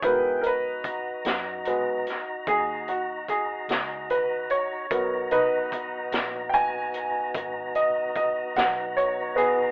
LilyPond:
<<
  \new Staff \with { instrumentName = "Upright piano" } { \time 12/8 \key gis \minor \tempo 4. = 49 b'8 <ais' b'>2 r8 gis'8 fis'8 gis'4 b'8 cis''8~ | cis''8 <dis' b'>4 r8 <g'' gis''>4. dis''8 dis''8 fis''8 cis''8 <b gis'>8 | }
  \new Staff \with { instrumentName = "Upright piano" } { \time 12/8 \key gis \minor <fis b ais'>2 <fis gis b>8 r2. r8 | <fis b ais'>4. r1 r8 | }
  \new Staff \with { instrumentName = "Tonewheel organ" } { \time 12/8 \key gis \minor <b e' gis' g''>8 <dis' fis' ais''>1~ <dis' fis' ais''>4. | <b dis' fis' ais''>1. | }
  \new Staff \with { instrumentName = "Fingered electric bass" } { \clef bass \time 12/8 \key gis \minor gis,4. fis,4. dis,4. cis,4. | b,,4. ais,,4. gis,,4. b,,4. | }
  \new DrumStaff \with { instrumentName = "Drums" } \drummode { \time 12/8 <hh bd>8 hh8 <hh bd>8 <hh sn>8 hh8 <hh sn>8 <hh bd>8 hh8 <hh bd>8 <hh sn>8 hh8 hh8 | <hh bd>8 hh8 <hh bd>8 <hh sn>8 hh8 hh8 <hh bd>8 hh8 <hh bd>8 <hh sn>8 hh8 hh8 | }
>>